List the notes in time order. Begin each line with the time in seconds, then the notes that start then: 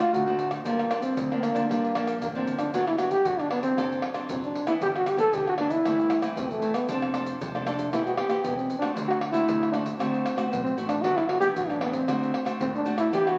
Already playing: A3 C4 F4
0.00 F#4, pandeiro, tamborim, shaker
0.13 D2 A2 F#4, pandeiro, shaker, surdo
0.26 A3 C4 F#4, pandeiro, shaker
0.39 pandeiro, shaker
0.51 pandeiro, tamborim, shaker, surdo
0.64 G1 G2 F3 A#3 D4, pandeiro, shaker, surdo
0.79 pandeiro, tamborim, shaker
0.90 F3 A#3 D4, pandeiro, tamborim, shaker
1.02 C4, pandeiro, shaker, surdo
1.17 D2 D3, pandeiro, shaker, surdo
1.31 F3 A#3 D4, pandeiro, tamborim, shaker, surdo
1.43 A#3, pandeiro, tamborim, shaker
1.54 D2 F3 A#3 D4, pandeiro, shaker, surdo
1.69 G2 F3 A#3 D4, pandeiro, tamborim, shaker, surdo
1.85 pandeiro, shaker
1.94 A#1 F3 A#3 D4, pandeiro, tamborim, shaker
2.07 pandeiro, tamborim, shaker
2.21 A1 D3 A#3, pandeiro, shaker, surdo
2.35 F3 A#3 C4 D4, pandeiro, shaker
2.46 G1, pandeiro, shaker, surdo
2.59 D4, pandeiro, tamborim, shaker, surdo
2.73 G1 G2 F#3 B3 D4 F#4, pandeiro, shaker, surdo
2.87 E4, pandeiro, tamborim, shaker
2.97 F#3 B3 D4 F#4, pandeiro, tamborim, shaker
3.11 G4, pandeiro, shaker, surdo
3.25 G1 D3 F#4, pandeiro, shaker, surdo
3.39 D4, pandeiro, tamborim, shaker, surdo
3.50 F#3 B3 D4, pandeiro, tamborim
3.63 C4, pandeiro, shaker, surdo
3.77 F#1 F#3 C4 D4 A4, pandeiro, tamborim, shaker, surdo
3.92 pandeiro, shaker
4.02 pandeiro, tamborim
4.14 C4 D4 A4, pandeiro, tamborim, shaker
4.29 F#1 F#3 C4, pandeiro, shaker, surdo
4.44 D4, pandeiro, shaker
4.55 pandeiro, shaker, surdo
4.66 E3 B3 D4 E4, pandeiro, tamborim, shaker, surdo
4.81 G1 G2 G4, pandeiro, shaker, surdo
4.96 F#4, pandeiro, tamborim, shaker
5.06 G4, pandeiro, tamborim, shaker
5.17 E3 B3 D4 A4, pandeiro, shaker, surdo
5.33 G1 D3 G4, pandeiro, shaker, surdo
5.47 F#4, pandeiro, tamborim, shaker, surdo
5.58 E3 B3 D4, pandeiro, tamborim
5.70 E4, pandeiro, shaker, surdo
5.85 G1 G2 E3 A3 C4, pandeiro, tamborim, shaker, surdo
5.99 pandeiro, shaker
6.10 pandeiro, tamborim, shaker
6.22 E3 A3 C4, pandeiro, tamborim, shaker
6.36 F#1 G2 C4, pandeiro, shaker, surdo
6.51 A3, pandeiro, shaker
6.62 E3 A3 C4, pandeiro, shaker, surdo
6.74 B3, pandeiro, tamborim, shaker, surdo
6.89 F1 F3 C4 D4 A4, pandeiro, shaker, surdo
7.02 pandeiro, tamborim, shaker
7.14 C4 D4 A4, pandeiro, tamborim, shaker
7.26 pandeiro, shaker, surdo
7.41 F1 C3, pandeiro, shaker, surdo
7.55 C4 D4 A4, pandeiro, tamborim, shaker, surdo
7.66 C4 D4 A4, pandeiro, tamborim, shaker
7.79 pandeiro, shaker, surdo
7.92 E1 E3 B3 C4 E4 G4, pandeiro, tamborim, shaker, surdo
8.06 F#4, pandeiro, shaker
8.17 B3 C4 G4, pandeiro, tamborim
8.29 B3 C4 G4, pandeiro, tamborim, shaker
8.44 E1 E3 B3, pandeiro, shaker, surdo
8.56 C4, pandeiro, shaker
8.70 pandeiro, shaker, surdo
8.79 A3 C4 D4 F#4, pandeiro, tamborim, shaker, surdo
8.96 D2 D3, pandeiro, shaker, surdo
9.08 F#4, pandeiro, tamborim, shaker
9.21 pandeiro, tamborim
9.32 A3 C4 E4 F#4, pandeiro, shaker, surdo
9.48 D2 A2, pandeiro, shaker, surdo
9.63 pandeiro, tamborim, shaker, surdo
9.72 A3 C4 D4 F#4, pandeiro, tamborim, shaker
9.86 pandeiro, shaker, surdo
9.99 D2 D3 A3 C4 F#4, pandeiro, tamborim, shaker, surdo
10.14 pandeiro, shaker
10.26 pandeiro, tamborim, shaker
10.36 A3 C4 F#4, pandeiro, tamborim, shaker
10.50 B1 A2 B3, pandeiro, shaker, surdo
10.64 C4, pandeiro, shaker
10.77 A1 A3 C4 F#4, pandeiro, shaker, surdo
10.87 D4, pandeiro, tamborim, shaker, surdo
11.02 G1 G2 F#3 B3 D4 F#4, pandeiro, shaker, surdo
11.16 E4, pandeiro, tamborim, shaker
11.29 F#4, pandeiro, tamborim
11.40 F#3 B3 D4 G4, pandeiro, shaker, surdo
11.55 A1 D3 F#4, pandeiro, shaker, surdo
11.69 D4, pandeiro, tamborim, shaker, surdo
11.81 F#3 B3 D4, pandeiro, tamborim
11.93 C4, pandeiro, shaker, surdo
12.08 D2 D3 A3 C4 F#4, pandeiro, tamborim, shaker, surdo
12.23 pandeiro, shaker
12.34 pandeiro, tamborim
12.45 A3 C4 F#4, pandeiro, tamborim, shaker
12.60 D#2 A2 C4, pandeiro, shaker, surdo
12.76 D4, pandeiro, shaker
12.85 A3 C4 F#4, pandeiro, shaker
12.98 E4, pandeiro, tamborim, shaker, surdo
13.12 E2 E3 B3 D4 G4, pandeiro, shaker, surdo
13.27 F#4, pandeiro, tamborim, shaker